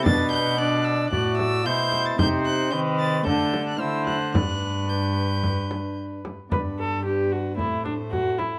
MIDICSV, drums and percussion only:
0, 0, Header, 1, 2, 480
1, 0, Start_track
1, 0, Key_signature, 1, "major"
1, 0, Tempo, 537153
1, 51, Time_signature, 4, 2, 24, 8
1, 7675, End_track
2, 0, Start_track
2, 0, Title_t, "Frame drum"
2, 54, Note_on_c, 9, 64, 88
2, 143, Note_off_c, 9, 64, 0
2, 1006, Note_on_c, 9, 64, 52
2, 1096, Note_off_c, 9, 64, 0
2, 1245, Note_on_c, 9, 64, 54
2, 1334, Note_off_c, 9, 64, 0
2, 1716, Note_on_c, 9, 64, 46
2, 1806, Note_off_c, 9, 64, 0
2, 1956, Note_on_c, 9, 64, 81
2, 2046, Note_off_c, 9, 64, 0
2, 2918, Note_on_c, 9, 64, 55
2, 3007, Note_off_c, 9, 64, 0
2, 3161, Note_on_c, 9, 64, 55
2, 3250, Note_off_c, 9, 64, 0
2, 3639, Note_on_c, 9, 64, 54
2, 3728, Note_off_c, 9, 64, 0
2, 3886, Note_on_c, 9, 64, 90
2, 3975, Note_off_c, 9, 64, 0
2, 4857, Note_on_c, 9, 64, 55
2, 4947, Note_off_c, 9, 64, 0
2, 5101, Note_on_c, 9, 64, 54
2, 5191, Note_off_c, 9, 64, 0
2, 5584, Note_on_c, 9, 64, 50
2, 5674, Note_off_c, 9, 64, 0
2, 5824, Note_on_c, 9, 64, 75
2, 5913, Note_off_c, 9, 64, 0
2, 6783, Note_on_c, 9, 64, 45
2, 6872, Note_off_c, 9, 64, 0
2, 7021, Note_on_c, 9, 64, 46
2, 7111, Note_off_c, 9, 64, 0
2, 7263, Note_on_c, 9, 64, 48
2, 7352, Note_off_c, 9, 64, 0
2, 7500, Note_on_c, 9, 64, 45
2, 7589, Note_off_c, 9, 64, 0
2, 7675, End_track
0, 0, End_of_file